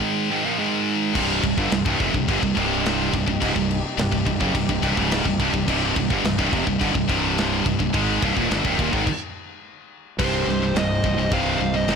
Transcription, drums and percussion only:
1.15 kick, crash
1.44 kick, crash
1.58 kick
1.71 snare, crash
1.86 kick
2.00 kick, crash
2.14 kick
2.29 kick, crash
2.43 kick
2.57 kick, crash
2.86 snare, crash
3.14 kick, crash
3.28 kick
3.42 kick, crash
3.56 kick
3.71 crash
3.99 snare, crash
4.12 kick
4.27 kick, crash
4.41 kick
4.55 kick, crash
4.69 kick
4.83 kick, crash
4.97 kick
5.11 snare, crash
5.25 kick
5.40 kick, crash
5.54 kick
5.68 kick, crash
5.96 kick, crash
6.10 kick
6.25 snare, crash
6.39 kick
6.53 kick, crash
6.67 kick
6.81 kick, crash
6.95 kick
7.09 kick, crash
7.38 snare, crash
7.66 kick, crash
7.80 kick
7.94 kick, crash
8.23 kick, crash
8.37 kick
8.51 snare, crash
8.65 kick
8.79 kick, crash
8.93 kick
9.07 kick, crash
10.19 kick, crash
10.49 snare
10.76 snare, crash
11.04 kick
11.31 kick, crash
11.88 snare, crash

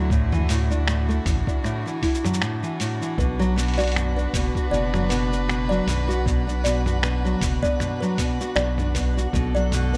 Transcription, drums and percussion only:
0.10 kick, cabasa
0.33 mid tom, cabasa
0.49 open hi-hat, cabasa
0.71 cabasa
0.88 finger snap, cabasa
1.10 cabasa
1.26 kick, mid tom, open hi-hat, cabasa
1.47 kick, cabasa
1.64 finger snap, cabasa
1.87 cabasa
2.03 kick, open hi-hat, cabasa
2.15 cabasa
2.25 mid tom, cabasa
2.34 cabasa
2.42 finger snap, cabasa
2.64 cabasa
2.80 open hi-hat, cabasa
3.02 cabasa
3.18 kick, cabasa
3.41 cabasa
3.58 open hi-hat, cabasa
3.63 open hi-hat
3.68 open hi-hat
3.74 open hi-hat
3.79 open hi-hat, cabasa
3.84 open hi-hat
3.88 open hi-hat
3.92 open hi-hat
3.96 finger snap, mid tom, cabasa
4.18 cabasa
4.34 kick, open hi-hat, cabasa
4.55 kick, cabasa
4.73 cabasa
4.94 finger snap, mid tom, cabasa
5.10 open hi-hat, cabasa
5.33 cabasa
5.49 finger snap, cabasa
5.72 cabasa
5.88 mid tom, open hi-hat, cabasa
6.10 cabasa
6.26 kick, cabasa
6.49 cabasa
6.65 open hi-hat, cabasa
6.86 mid tom, cabasa
7.03 finger snap, cabasa
7.26 cabasa
7.41 kick, open hi-hat, cabasa
7.63 kick, cabasa
7.80 finger snap, mid tom, cabasa
8.02 cabasa
8.18 kick, open hi-hat, cabasa
8.41 cabasa
8.56 finger snap, cabasa
8.78 mid tom, cabasa
8.95 kick, open hi-hat, cabasa
9.18 cabasa
9.33 kick, cabasa
9.56 cabasa
9.72 mid tom, open hi-hat, cabasa
9.94 cabasa

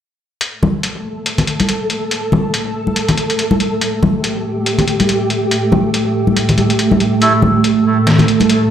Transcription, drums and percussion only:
0.41 closed hi-hat
0.63 high conga, low conga
0.83 closed hi-hat
1.26 closed hi-hat
1.38 closed hi-hat, low conga
1.47 closed hi-hat
1.60 closed hi-hat, high conga
1.69 closed hi-hat
1.90 closed hi-hat
2.11 closed hi-hat
2.32 high conga, low conga
2.54 closed hi-hat
2.87 high conga
2.96 closed hi-hat
3.08 closed hi-hat, low conga
3.17 closed hi-hat
3.30 closed hi-hat
3.39 closed hi-hat
3.51 high conga
3.60 closed hi-hat
3.81 closed hi-hat
4.03 high conga, low conga
4.24 closed hi-hat
4.66 closed hi-hat
4.78 closed hi-hat, low conga
4.88 closed hi-hat
5.00 closed hi-hat, high conga
5.09 closed hi-hat
5.30 closed hi-hat
5.51 closed hi-hat
5.72 high conga, low conga
5.94 closed hi-hat
6.27 high conga
6.37 closed hi-hat
6.49 closed hi-hat, low conga
6.58 closed hi-hat, high conga
6.70 closed hi-hat
6.79 closed hi-hat
6.92 high conga
7.00 closed hi-hat
7.22 closed hi-hat
7.42 high conga, low conga
7.64 closed hi-hat
8.07 snare, closed hi-hat
8.19 closed hi-hat, low conga
8.28 closed hi-hat
8.40 closed hi-hat, high conga
8.49 closed hi-hat

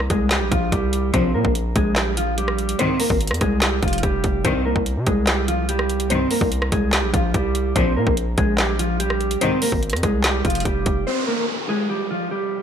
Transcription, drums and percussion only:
0.10 kick, closed hi-hat
0.31 snare, clap, closed hi-hat
0.52 kick, closed hi-hat
0.72 kick, closed hi-hat
0.93 closed hi-hat
1.14 kick, closed hi-hat
1.45 kick
1.55 closed hi-hat
1.76 kick, closed hi-hat
1.96 snare, clap, closed hi-hat
2.17 closed hi-hat
2.38 closed hi-hat
2.48 cross-stick
2.58 closed hi-hat
2.69 closed hi-hat
2.79 closed hi-hat
3.00 open hi-hat
3.10 kick
3.21 closed hi-hat
3.27 cross-stick, closed hi-hat
3.34 closed hi-hat
3.41 kick, cross-stick, closed hi-hat
3.62 snare, clap, closed hi-hat
3.83 kick, closed hi-hat
3.88 closed hi-hat
3.93 closed hi-hat
3.98 closed hi-hat
4.03 kick, closed hi-hat
4.24 kick, closed hi-hat
4.45 kick, closed hi-hat
4.76 kick
4.86 closed hi-hat
5.07 kick, closed hi-hat
5.27 snare, clap, closed hi-hat
5.48 closed hi-hat
5.69 closed hi-hat
5.79 cross-stick
5.89 closed hi-hat
6.00 closed hi-hat
6.10 closed hi-hat
6.31 open hi-hat
6.41 kick
6.52 closed hi-hat
6.62 cross-stick
6.72 kick, closed hi-hat
6.93 snare, clap, closed hi-hat
7.14 kick, closed hi-hat
7.34 kick, closed hi-hat
7.55 closed hi-hat
7.76 kick, closed hi-hat
8.07 kick
8.17 closed hi-hat
8.38 kick, closed hi-hat
8.58 snare, clap, closed hi-hat
8.79 closed hi-hat
9.00 closed hi-hat
9.10 cross-stick
9.21 closed hi-hat
9.31 closed hi-hat
9.41 closed hi-hat
9.62 open hi-hat
9.72 kick
9.83 closed hi-hat
9.90 cross-stick, closed hi-hat
9.96 closed hi-hat
10.03 kick, cross-stick, closed hi-hat
10.24 snare, clap, closed hi-hat
10.45 kick, closed hi-hat
10.50 closed hi-hat
10.55 closed hi-hat
10.60 closed hi-hat
10.65 kick, closed hi-hat
10.86 kick, closed hi-hat

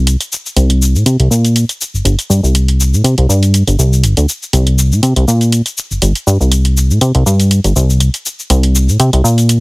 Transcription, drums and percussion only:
0.07 closed hi-hat, shaker
0.21 closed hi-hat, shaker
0.32 shaker
0.46 shaker
0.57 closed hi-hat, shaker
0.70 closed hi-hat
0.82 shaker
0.96 shaker
1.06 closed hi-hat, shaker
1.20 closed hi-hat
1.32 shaker
1.45 closed hi-hat, shaker
1.56 closed hi-hat, shaker
1.69 closed hi-hat, shaker
1.81 shaker
1.95 shaker
2.05 closed hi-hat, shaker
2.19 closed hi-hat, shaker
2.31 shaker
2.44 shaker
2.55 closed hi-hat, shaker
2.68 closed hi-hat
2.80 shaker
2.94 shaker
3.04 closed hi-hat, shaker
3.18 closed hi-hat
3.30 shaker
3.43 closed hi-hat, shaker
3.54 closed hi-hat, shaker
3.67 closed hi-hat, shaker
3.79 shaker
3.93 shaker
4.04 closed hi-hat, shaker
4.17 closed hi-hat, shaker
4.29 shaker
4.43 shaker
4.53 closed hi-hat, shaker
4.67 closed hi-hat
4.79 shaker
4.92 shaker
5.03 closed hi-hat, shaker
5.16 closed hi-hat
5.28 shaker
5.41 closed hi-hat, shaker
5.52 closed hi-hat, shaker
5.66 closed hi-hat, shaker
5.78 shaker
5.91 shaker
6.02 closed hi-hat, shaker
6.15 closed hi-hat, shaker
6.28 shaker
6.41 shaker
6.52 closed hi-hat, shaker
6.65 closed hi-hat
6.77 shaker
6.91 shaker
7.01 closed hi-hat, shaker
7.15 closed hi-hat
7.27 shaker
7.40 closed hi-hat, shaker
7.51 closed hi-hat, shaker
7.64 closed hi-hat, shaker
7.76 shaker
7.90 shaker
8.00 closed hi-hat, shaker
8.14 closed hi-hat, shaker
8.26 shaker
8.39 shaker
8.50 closed hi-hat, shaker
8.63 closed hi-hat
8.75 shaker
8.89 shaker
9.00 closed hi-hat, shaker
9.13 closed hi-hat
9.25 shaker
9.38 closed hi-hat, shaker
9.49 closed hi-hat, shaker

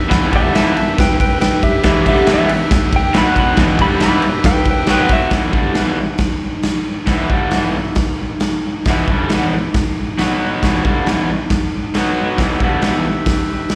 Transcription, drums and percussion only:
0.11 kick, snare, ride
0.33 kick, ride
0.55 snare, ride
0.77 ride
0.98 kick, snare, ride
1.20 kick, ride
1.41 snare, ride
1.63 kick, ride
1.83 kick, snare, ride
2.06 kick, ride
2.26 snare, ride
2.49 ride
2.71 kick, snare, ride
2.93 kick, ride
3.14 snare, ride
3.36 kick, ride
3.57 kick, snare, ride
3.79 kick, ride
4.00 snare, ride
4.22 ride
4.44 kick, snare, ride
4.65 kick, ride
4.86 snare, ride
5.09 kick, ride
5.30 kick, snare, open hi-hat
5.53 kick
5.75 snare, open hi-hat
6.18 kick, snare, open hi-hat
6.63 snare, open hi-hat
7.06 kick, snare, open hi-hat
7.30 kick
7.51 snare, open hi-hat
7.95 kick, snare, open hi-hat
8.40 snare, open hi-hat
8.85 kick, snare, open hi-hat
9.08 kick
9.29 snare, open hi-hat
9.74 kick, snare, open hi-hat
10.18 snare, open hi-hat
10.63 kick, snare, open hi-hat
10.85 kick
11.06 snare, open hi-hat
11.50 kick, snare, open hi-hat
11.94 snare, open hi-hat
12.38 kick, snare, open hi-hat
12.60 kick
12.82 snare, open hi-hat
13.26 kick, snare, open hi-hat
13.69 snare, open hi-hat

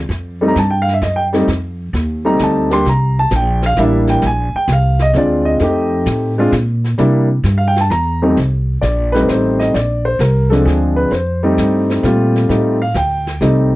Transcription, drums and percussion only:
0.11 brush sweep, snare
0.56 snare, hi-hat pedal
0.88 snare
1.02 snare, hi-hat pedal
1.33 snare
1.48 brush sweep, snare
1.95 snare
2.39 snare, hi-hat pedal
2.71 snare
2.86 brush sweep, snare
3.31 snare, hi-hat pedal
3.62 snare
3.76 snare, hi-hat pedal
4.07 snare
4.22 brush sweep, snare
4.68 snare, hi-hat pedal
4.99 snare
5.14 snare
5.60 brush sweep, snare
6.06 snare, hi-hat pedal
6.52 snare, hi-hat pedal
6.84 snare
6.99 brush sweep, snare
7.44 snare, hi-hat pedal
7.76 snare
7.91 snare, hi-hat pedal
8.37 brush sweep, snare
8.83 snare, hi-hat pedal
9.14 snare
9.29 snare, hi-hat pedal
9.60 snare
9.75 brush sweep, snare
10.20 snare, hi-hat pedal
10.52 snare
10.67 snare
11.12 brush sweep, snare
11.58 snare, hi-hat pedal
11.90 snare
12.04 snare, hi-hat pedal
12.36 snare
12.50 brush sweep, snare
12.95 snare, hi-hat pedal
13.27 snare
13.41 snare, hi-hat pedal

